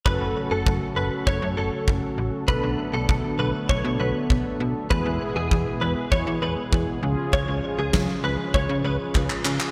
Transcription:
0.06 fm bass F#1, analog synth pad C#3 F#3 A3 F#4 A4, analog polysynth C#4 F#4 A4, clean electric guitar B4, kick
0.21 fm bass F#1
0.51 fm bass F#1, clean electric guitar A4
0.67 fm bass F#1, kick
0.96 fm bass F#1, clean electric guitar B4
1.27 fm bass F#1, clean electric guitar C#5, kick
1.42 fm bass F#2
1.57 fm bass F#1, clean electric guitar A4
1.88 fm bass F#1, kick
2.18 fm bass A1
2.48 fm bass B1, analog synth pad D3 A3 B3, analog polysynth B3 D4 A4, clean electric guitar B4, kick
2.63 fm bass B1
2.94 fm bass B1, clean electric guitar A4
3.09 fm bass B1, kick
3.39 fm bass B1, clean electric guitar B4
3.69 fm bass B1, clean electric guitar C#5, kick
3.85 fm bass B2
4.00 fm bass B1, clean electric guitar B4
4.30 fm bass B1, kick
4.60 fm bass B2
4.90 fm bass E2, analog synth pad B2 E3 G#3 E4 G#4, analog polysynth B3 E4 G#4, clean electric guitar B4, kick
5.06 fm bass E2
5.36 fm bass E2, clean electric guitar G#4
5.51 fm bass E2, kick
5.81 fm bass E2, clean electric guitar B4
6.12 fm bass E2, clean electric guitar C#5, kick
6.27 fm bass E3
6.42 fm bass E2, clean electric guitar B4
6.73 fm bass E2, kick
7.03 fm bass C#2, analog synth pad C#3 F3 G#3 F4, analog polysynth C#4 F4 G#4
7.33 fm bass C#2, clean electric guitar C#5, kick
7.48 fm bass C#2
7.78 fm bass C#2, clean electric guitar G#4
7.93 fm bass C#2, kick, snare
8.24 fm bass C#2, clean electric guitar B4
8.54 fm bass C#2, clean electric guitar C#5, kick
8.69 fm bass C#3
8.84 fm bass C#2, clean electric guitar B4
9.15 fm bass C#2, kick, clap
9.30 clap
9.45 fm bass C#3, clap
9.60 clap

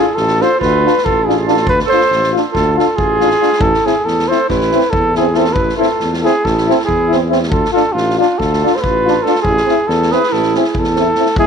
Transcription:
Already playing: clarinet E4, cornet G#4
0.15 tuba A1, clarinet F4, cornet A4, snare
0.28 snare
0.38 euphonium D4, trombone F4, clarinet A4, cornet C5, snare
0.58 clarinet F4, cornet B4, kick
0.62 tuba D2, snare
0.85 euphonium D4, trombone F4, snare
0.98 snare
1.02 tuba A1, clarinet F4, cornet A4, kick
1.23 clarinet E4, cornet G#4
1.27 euphonium D4, trombone F4, snare
1.41 clarinet F4
1.47 euphonium D4, trombone F4, cornet A4, snare
1.57 snare
1.61 clarinet F4
1.67 tuba D2, cornet B4, kick
1.79 snare
1.86 clarinet A4, cornet C5
1.91 euphonium D4, trombone F4, snare
2.01 snare
2.11 tuba A1, snare
2.23 snare
2.32 trombone F4
2.36 euphonium D4, snare
2.49 clarinet F4, cornet A4
2.55 tuba D2, kick, snare
2.74 clarinet F4, trombone F4
2.79 euphonium D4, cornet A4, snare
2.93 clarinet F4, cornet G#4
2.98 tuba A1, kick
3.20 euphonium D4, trombone F4, snare
3.30 snare
3.41 euphonium D4, trombone F4, snare
3.52 snare
3.58 tuba A1, clarinet E4, cornet A4, kick
3.74 snare
3.83 euphonium C4, clarinet E4, trombone E4, cornet G#4, snare
4.01 clarinet E4, cornet A4
4.05 tuba E2, snare
4.19 snare
4.28 euphonium C4, trombone E4, clarinet A4, cornet C5, snare
4.48 tuba A1, clarinet E4, cornet B4, kick, snare
4.61 snare
4.72 euphonium C4, trombone E4, snare
4.80 snare
4.90 clarinet E4, cornet A4, kick
4.95 tuba E2
5.13 clarinet E4, trombone E4, cornet G#4, snare
5.19 euphonium C4
5.32 trombone E4, clarinet F4, snare
5.37 euphonium C4, cornet A4
5.45 snare
5.52 clarinet E4, cornet B4, kick
5.57 tuba A1
5.69 snare
5.76 euphonium C4, trombone E4, clarinet F4, cornet A4
5.82 snare
6.00 tuba E2, snare
6.13 clarinet F4, snare
6.20 clarinet E4, trombone E4, cornet A4
6.24 euphonium C4, cornet G#4, snare
6.42 tuba A1, clarinet E4, cornet A4, kick, snare
6.57 snare
6.68 euphonium C4, trombone E4, snare
6.80 snare
6.85 clarinet E4, cornet G#4, kick
6.89 tuba E2
7.08 trombone E4, snare
7.12 euphonium C4
7.29 euphonium C4, trombone E4, snare
7.43 snare
7.48 tuba D2, clarinet F4, cornet A4
7.52 kick
7.65 snare
7.71 clarinet F4, trombone F4, cornet A4
7.76 euphonium D4, snare
7.92 tuba A1, clarinet D4, cornet F4
7.97 snare
8.10 snare
8.17 clarinet D4, euphonium D4, trombone F4, cornet F4
8.21 snare
8.37 tuba D2, clarinet F4, cornet A4, kick, snare
8.53 snare
8.64 euphonium D4, trombone F4, snare
8.76 clarinet A4, cornet C5, snare
8.80 tuba A1, clarinet F4, cornet B4, kick
9.05 euphonium D4, trombone F4, snare
9.23 euphonium D4, clarinet F4, cornet A4, snare
9.28 trombone F4
9.35 snare
9.42 clarinet E4, cornet G#4, kick
9.47 tuba A1
9.57 snare
9.65 euphonium C4, snare
9.70 trombone E4
9.85 tuba E2, clarinet E4, cornet A4
9.90 snare
10.02 snare
10.11 euphonium C4, trombone E4, clarinet G#4, cornet B4, snare
10.23 snare
10.29 tuba A1, clarinet E4, cornet A4
10.33 snare
10.43 snare
10.54 euphonium C4, clarinet E4, trombone E4, cornet G#4, snare
10.64 snare
10.75 tuba E2, clarinet E4, kick
10.79 cornet A4
10.84 snare
10.95 euphonium C4, snare
11.00 trombone E4
11.15 euphonium C4, snare
11.19 trombone E4
11.26 snare
11.36 tuba E2, euphonium G#3, clarinet E4, trombone E4, cornet G#4, kick

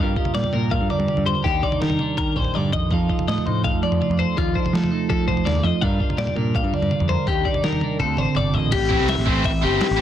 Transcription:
Already playing: clean electric guitar F5
0.00 picked electric bass G2, clean electric guitar G2 F4 G4 A#4
0.16 clean electric guitar G4, kick
0.25 floor tom, mid tom
0.35 picked electric bass A#2, clean electric guitar G3 D5, snare
0.44 floor tom, mid tom
0.53 picked electric bass A#2, clean electric guitar F4 A#4, mid tom
0.71 clean electric guitar A#4 F5, kick, floor tom
0.81 picked electric bass G2
0.90 clean electric guitar D3 D5, floor tom
0.99 picked electric bass G2, floor tom
1.08 clean electric guitar G4, mid tom
1.17 picked electric bass G2, floor tom
1.26 clean electric guitar G4 C5, floor tom
1.35 clean electric guitar A#4
1.44 picked electric bass D#2, clean electric guitar D#3 D4 D#4 G4, kick, floor tom
1.63 clean electric guitar D#4 D5, kick
1.72 floor tom, mid tom
1.80 picked electric bass D#3, clean electric guitar G3 A#4, snare
1.90 floor tom, mid tom
1.99 clean electric guitar D4, mid tom
2.17 picked electric bass D#3, clean electric guitar G4 A#4, kick, floor tom
2.36 picked electric bass A#1, clean electric guitar A#2 C5, kick, floor tom
2.45 floor tom
2.54 picked electric bass G2, clean electric guitar D3 D5, high tom
2.73 picked electric bass F2, clean electric guitar D#3 D#5, kick
2.91 picked electric bass F2, clean electric guitar F3 D#4 F4 A4 F5, kick, floor tom
3.09 clean electric guitar F4, kick
3.19 floor tom, mid tom
3.28 picked electric bass A2, clean electric guitar A3 D#5, snare
3.38 floor tom, mid tom
3.46 picked electric bass A2, clean electric guitar D#4 C5, mid tom
3.64 clean electric guitar A4 F5, kick, floor tom
3.74 picked electric bass F2
3.83 clean electric guitar F3 D5, floor tom
3.92 picked electric bass F2, floor tom
4.02 clean electric guitar F4, mid tom
4.10 picked electric bass F2, floor tom
4.19 clean electric guitar A4 C5, floor tom
4.37 picked electric bass D#2, clean electric guitar F3 D#4 F4 A4, kick, floor tom
4.55 clean electric guitar D4 C5, kick
4.65 clean electric guitar F4, floor tom, mid tom
4.73 picked electric bass F3, clean electric guitar A3 A4, snare
4.84 floor tom, mid tom
4.91 clean electric guitar D#4
5.10 picked electric bass F3, clean electric guitar A4, kick, floor tom
5.28 picked electric bass C2, clean electric guitar F3 C5, kick, floor tom
5.37 floor tom
5.45 picked electric bass D#2, clean electric guitar D#3 D5, snare, floor tom, mid tom
5.55 floor tom
5.63 picked electric bass F2, clean electric guitar F3 D#5, floor tom
5.81 clean electric guitar G2 D4 F4 A#4 F5, picked electric bass G2, kick, floor tom
6.00 clean electric guitar F4, kick
6.10 floor tom, mid tom
6.18 picked electric bass A#2, clean electric guitar G3 D5, snare
6.27 floor tom, mid tom
6.36 picked electric bass A#2, clean electric guitar D4 A#4, mid tom
6.55 clean electric guitar G4 F5, kick, floor tom
6.64 picked electric bass G2, clean electric guitar A#4
6.73 clean electric guitar D3 D5, floor tom
6.82 picked electric bass G2, floor tom
6.91 clean electric guitar F4, mid tom
7.00 picked electric bass F2, floor tom
7.09 clean electric guitar A#4 C5, floor tom
7.27 picked electric bass D#2, clean electric guitar D#3 D4 D#4 G4, kick, floor tom
7.45 clean electric guitar D#4 D5, kick
7.54 floor tom, mid tom
7.64 picked electric bass D#3, clean electric guitar G3 A#4, snare
7.73 floor tom, mid tom
7.81 clean electric guitar D4, mid tom
8.00 picked electric bass D2, clean electric guitar D3 C4 F4 A4, kick
8.17 picked electric bass A1, clean electric guitar D4 C5, mid tom
8.28 clean electric guitar F4
8.35 picked electric bass G1, clean electric guitar C3 D5, mid tom
8.54 picked electric bass A1, clean electric guitar A#2 D#5, floor tom
8.72 picked electric bass A1, clean electric guitar G4, kick, open hi-hat, crash
8.89 overdriven electric guitar E3 A3 C4 E4, kick
9.00 picked electric bass C2
9.08 clean electric guitar E5, snare, open hi-hat
9.18 picked electric bass A1
9.26 overdriven electric guitar E3 A3 C4 E4, clean electric guitar C5, kick
9.44 picked electric bass A1, clean electric guitar E5, kick, open hi-hat
9.62 picked electric bass G1, overdriven electric guitar E3 A3 C4 E4, clean electric guitar G4
9.81 snare, open hi-hat
9.91 picked electric bass A1
9.96 overdriven electric guitar E3 A3 C4 E4

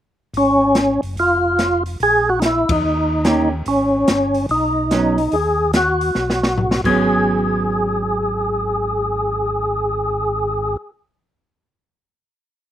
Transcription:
0.33 tonewheel organ G#1 C#4, open hi-hat
0.75 snare, closed hi-hat
1.02 tonewheel organ F#1, open hi-hat
1.16 tonewheel organ F1 F4, open hi-hat
1.59 snare, closed hi-hat
1.86 open hi-hat
2.00 tonewheel organ A#1 G#4, open hi-hat
2.29 tonewheel organ F#4
2.40 tonewheel organ D#4, snare, closed hi-hat
2.45 tonewheel organ E4
2.69 tonewheel organ E2 D#4, kick, ride
2.83 tonewheel organ D#2
3.25 hollow-body jazz guitar D#3 A#3 C#4 G4, snare, closed hi-hat
3.66 tonewheel organ G#1 C#4, open hi-hat
4.08 tonewheel organ G1, snare, closed hi-hat
4.34 open hi-hat
4.49 tonewheel organ B1 D#4, open hi-hat
4.91 hollow-body jazz guitar F#3 B3 C#4, snare, closed hi-hat
5.18 open hi-hat
5.32 tonewheel organ D#2 G#4, open hi-hat
5.73 tonewheel organ F#4, snare, closed hi-hat
6.01 open hi-hat
6.15 tonewheel organ B1, snare
6.30 snare
6.43 snare
6.58 floor tom
6.71 snare
6.84 tonewheel organ G#1 G#4, hollow-body jazz guitar F#3 B3 C#4, kick, crash

